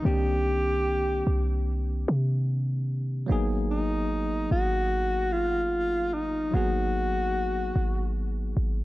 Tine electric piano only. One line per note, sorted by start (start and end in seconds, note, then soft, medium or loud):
0.02 3.24 D#3 medium
0.02 3.25 A#3 medium
0.02 3.25 C4 medium
0.06 3.26 D4 medium
0.06 3.27 G4 medium
3.27 6.48 F#3 medium
3.27 6.49 A#3 medium
3.27 6.50 B3 medium
3.31 6.50 D#4 medium
3.31 6.51 G#4 medium
6.51 8.84 F#3 medium
6.51 8.84 A#3 medium
6.51 8.84 B3 medium
6.55 8.84 D#4 medium
6.55 8.84 G#4 medium